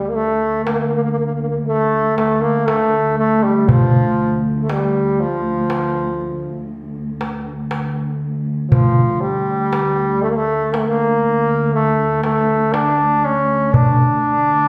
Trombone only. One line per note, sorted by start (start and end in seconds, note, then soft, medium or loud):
0.00 0.10 G3 medium
0.09 0.17 A#3 medium
0.15 0.64 A3 medium
0.65 0.72 A#3 medium
0.72 0.80 A#3 medium
0.80 0.87 A#3 medium
0.87 0.95 A#3 soft
0.96 1.03 A#3 medium
1.04 1.11 A#3 medium
1.11 1.18 A#3 medium
1.19 1.25 A#3 medium
1.26 1.33 A#3 medium
1.35 1.41 A#3 medium
1.42 1.48 A#3 medium
1.49 1.56 A#3 medium
1.67 2.14 A3 medium
2.18 2.43 A3 medium
2.41 2.68 A#3 medium
2.67 3.17 A3 medium
3.18 3.45 A3 medium
3.43 3.70 G3 medium
3.69 4.42 F3 medium
4.61 4.73 A3 medium
4.71 5.22 G3 medium
5.20 6.71 F3 medium
8.70 9.23 F3 medium
9.21 10.24 G3 medium
10.22 10.31 A3 medium
10.30 10.38 A#3 medium
10.37 10.74 A3 medium
10.73 10.80 A#3 medium
10.78 10.89 A3 medium
10.87 11.73 A#3 medium
11.74 12.20 A3 medium
12.24 12.74 A3 medium
12.73 13.27 D4 medium
13.25 13.76 C#4 medium
13.74 14.68 D4 medium